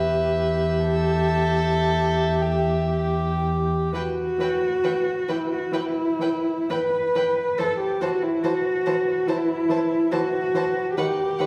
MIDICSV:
0, 0, Header, 1, 5, 480
1, 0, Start_track
1, 0, Key_signature, 1, "minor"
1, 0, Tempo, 1084991
1, 844, Tempo, 1015228
1, 1804, Time_signature, 4, 2, 24, 8
1, 1804, Tempo, 896861
1, 2764, Tempo, 958466
1, 3244, Tempo, 888889
1, 3724, Tempo, 846262
1, 5927, End_track
2, 0, Start_track
2, 0, Title_t, "Violin"
2, 0, Program_c, 0, 40
2, 0, Note_on_c, 0, 76, 52
2, 1568, Note_off_c, 0, 76, 0
2, 1811, Note_on_c, 0, 79, 38
2, 1854, Note_off_c, 0, 79, 0
2, 2064, Note_on_c, 0, 79, 33
2, 2106, Note_off_c, 0, 79, 0
2, 2290, Note_on_c, 0, 79, 33
2, 2333, Note_off_c, 0, 79, 0
2, 2530, Note_on_c, 0, 79, 37
2, 2573, Note_off_c, 0, 79, 0
2, 2766, Note_on_c, 0, 79, 37
2, 2806, Note_off_c, 0, 79, 0
2, 3004, Note_on_c, 0, 79, 36
2, 3044, Note_off_c, 0, 79, 0
2, 3258, Note_on_c, 0, 79, 39
2, 3301, Note_off_c, 0, 79, 0
2, 3502, Note_on_c, 0, 79, 39
2, 3545, Note_off_c, 0, 79, 0
2, 3734, Note_on_c, 0, 81, 40
2, 3779, Note_off_c, 0, 81, 0
2, 3975, Note_on_c, 0, 81, 33
2, 4020, Note_off_c, 0, 81, 0
2, 4212, Note_on_c, 0, 81, 37
2, 4258, Note_off_c, 0, 81, 0
2, 4451, Note_on_c, 0, 81, 38
2, 4497, Note_off_c, 0, 81, 0
2, 4691, Note_on_c, 0, 81, 39
2, 4737, Note_off_c, 0, 81, 0
2, 4929, Note_on_c, 0, 81, 39
2, 4974, Note_off_c, 0, 81, 0
2, 5165, Note_on_c, 0, 81, 45
2, 5210, Note_off_c, 0, 81, 0
2, 5415, Note_on_c, 0, 81, 42
2, 5460, Note_off_c, 0, 81, 0
2, 5654, Note_on_c, 0, 78, 43
2, 5700, Note_off_c, 0, 78, 0
2, 5884, Note_on_c, 0, 78, 38
2, 5927, Note_off_c, 0, 78, 0
2, 5927, End_track
3, 0, Start_track
3, 0, Title_t, "Violin"
3, 0, Program_c, 1, 40
3, 0, Note_on_c, 1, 71, 34
3, 311, Note_off_c, 1, 71, 0
3, 376, Note_on_c, 1, 69, 52
3, 1087, Note_on_c, 1, 67, 35
3, 1094, Note_off_c, 1, 69, 0
3, 1322, Note_off_c, 1, 67, 0
3, 1325, Note_on_c, 1, 67, 39
3, 1795, Note_off_c, 1, 67, 0
3, 1807, Note_on_c, 1, 71, 38
3, 1849, Note_off_c, 1, 71, 0
3, 2054, Note_on_c, 1, 71, 36
3, 2097, Note_off_c, 1, 71, 0
3, 2286, Note_on_c, 1, 71, 38
3, 2329, Note_off_c, 1, 71, 0
3, 2526, Note_on_c, 1, 71, 35
3, 2569, Note_off_c, 1, 71, 0
3, 2766, Note_on_c, 1, 71, 38
3, 2806, Note_off_c, 1, 71, 0
3, 3007, Note_on_c, 1, 71, 36
3, 3047, Note_off_c, 1, 71, 0
3, 3250, Note_on_c, 1, 71, 38
3, 3293, Note_off_c, 1, 71, 0
3, 3494, Note_on_c, 1, 71, 38
3, 3538, Note_off_c, 1, 71, 0
3, 3724, Note_on_c, 1, 72, 41
3, 3770, Note_off_c, 1, 72, 0
3, 3972, Note_on_c, 1, 72, 40
3, 4017, Note_off_c, 1, 72, 0
3, 4213, Note_on_c, 1, 72, 42
3, 4259, Note_off_c, 1, 72, 0
3, 4451, Note_on_c, 1, 72, 39
3, 4497, Note_off_c, 1, 72, 0
3, 4690, Note_on_c, 1, 72, 39
3, 4735, Note_off_c, 1, 72, 0
3, 4932, Note_on_c, 1, 72, 34
3, 4977, Note_off_c, 1, 72, 0
3, 5162, Note_on_c, 1, 72, 40
3, 5208, Note_off_c, 1, 72, 0
3, 5412, Note_on_c, 1, 72, 40
3, 5457, Note_off_c, 1, 72, 0
3, 5652, Note_on_c, 1, 71, 45
3, 5697, Note_off_c, 1, 71, 0
3, 5895, Note_on_c, 1, 71, 42
3, 5927, Note_off_c, 1, 71, 0
3, 5927, End_track
4, 0, Start_track
4, 0, Title_t, "Cello"
4, 0, Program_c, 2, 42
4, 0, Note_on_c, 2, 40, 36
4, 1681, Note_off_c, 2, 40, 0
4, 1806, Note_on_c, 2, 66, 62
4, 2535, Note_on_c, 2, 64, 51
4, 2543, Note_off_c, 2, 66, 0
4, 2655, Note_on_c, 2, 66, 50
4, 2663, Note_off_c, 2, 64, 0
4, 2763, Note_on_c, 2, 64, 59
4, 2770, Note_off_c, 2, 66, 0
4, 3246, Note_on_c, 2, 71, 57
4, 3254, Note_off_c, 2, 64, 0
4, 3727, Note_on_c, 2, 69, 64
4, 3735, Note_off_c, 2, 71, 0
4, 3846, Note_off_c, 2, 69, 0
4, 3849, Note_on_c, 2, 67, 55
4, 3968, Note_on_c, 2, 66, 56
4, 3976, Note_off_c, 2, 67, 0
4, 4091, Note_on_c, 2, 64, 52
4, 4100, Note_off_c, 2, 66, 0
4, 4206, Note_on_c, 2, 66, 58
4, 4215, Note_off_c, 2, 64, 0
4, 4684, Note_on_c, 2, 64, 63
4, 4692, Note_off_c, 2, 66, 0
4, 5164, Note_on_c, 2, 66, 62
4, 5173, Note_off_c, 2, 64, 0
4, 5639, Note_off_c, 2, 66, 0
4, 5642, Note_on_c, 2, 67, 67
4, 5927, Note_off_c, 2, 67, 0
4, 5927, End_track
5, 0, Start_track
5, 0, Title_t, "Viola"
5, 0, Program_c, 3, 41
5, 0, Note_on_c, 3, 67, 37
5, 1700, Note_off_c, 3, 67, 0
5, 1801, Note_on_c, 3, 52, 42
5, 1844, Note_off_c, 3, 52, 0
5, 2044, Note_on_c, 3, 52, 40
5, 2087, Note_off_c, 3, 52, 0
5, 2288, Note_on_c, 3, 52, 40
5, 2331, Note_off_c, 3, 52, 0
5, 2527, Note_on_c, 3, 52, 39
5, 2570, Note_off_c, 3, 52, 0
5, 2759, Note_on_c, 3, 52, 42
5, 2799, Note_off_c, 3, 52, 0
5, 2994, Note_on_c, 3, 52, 38
5, 3034, Note_off_c, 3, 52, 0
5, 3248, Note_on_c, 3, 52, 45
5, 3291, Note_off_c, 3, 52, 0
5, 3496, Note_on_c, 3, 52, 37
5, 3539, Note_off_c, 3, 52, 0
5, 3732, Note_on_c, 3, 52, 44
5, 3778, Note_off_c, 3, 52, 0
5, 3970, Note_on_c, 3, 52, 40
5, 4015, Note_off_c, 3, 52, 0
5, 4211, Note_on_c, 3, 52, 43
5, 4256, Note_off_c, 3, 52, 0
5, 4457, Note_on_c, 3, 52, 43
5, 4502, Note_off_c, 3, 52, 0
5, 4685, Note_on_c, 3, 52, 45
5, 4731, Note_off_c, 3, 52, 0
5, 4923, Note_on_c, 3, 52, 48
5, 4968, Note_off_c, 3, 52, 0
5, 5169, Note_on_c, 3, 52, 52
5, 5215, Note_off_c, 3, 52, 0
5, 5406, Note_on_c, 3, 52, 41
5, 5452, Note_off_c, 3, 52, 0
5, 5651, Note_on_c, 3, 51, 50
5, 5697, Note_off_c, 3, 51, 0
5, 5890, Note_on_c, 3, 51, 45
5, 5927, Note_off_c, 3, 51, 0
5, 5927, End_track
0, 0, End_of_file